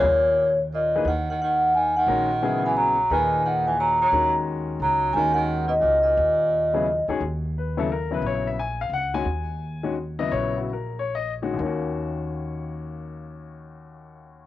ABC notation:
X:1
M:3/4
L:1/8
Q:"Swing" 1/4=176
K:Ebphr
V:1 name="Vibraphone"
d3 z e2 | g g g2 a g- | g3 a b2 | a2 g a b b- |
b z3 b2 | a g2 e e e- | e4- e z | z6 |
z6 | z6 | z6 | z6 |
z6 |]
V:2 name="Grand piano"
z6 | z6 | z6 | z6 |
z6 | z6 | z6 | z2 c =A B c |
d f a =f g a- | a4 z e | d G B d e z | z6 |
z6 |]
V:3 name="Grand piano"
z4 z [F,B,EAc] | z6 | [E,A,DGB] z [D,G,CFA]3 z | [B,,E,EAc]4- [B,,E,EAc] z |
[E,A,DGB]4- [E,A,DGB] z | [E,A,DGB]4- [E,A,DGB] z | z3 [D,G,CFA] z [E,A,DGA] | z3 [D,G,CF] z [D,G,CF]- |
[D,G,CF]2 z3 [E,A,DG] | z3 [E,A,DG] z [D,G,CF]- | [D,G,CF]2 z3 [E,A,DG] | [E,,E,B,DG]6- |
[E,,E,B,DG]6 |]
V:4 name="Tenor saxophone" clef=bass
B,,3 z B,,2 | E, E, E,2 E, E,- | E,3 F, G,2 | E,2 E, F, G, G,- |
G, z3 G,2 | E, E,2 C, B,, B,,- | B,,4- B,, z | z6 |
z6 | z6 | z6 | z6 |
z6 |]
V:5 name="Upright bass" clef=bass
E,,6 | E,,6 | B,,,6 | E,,6 |
E,,4 D,,2 | E,,4 D,,2 | E,,4- E,, F,, | E,,6 |
B,,,4 D,,2 | E,,6 | B,,,6 | E,,6- |
E,,6 |]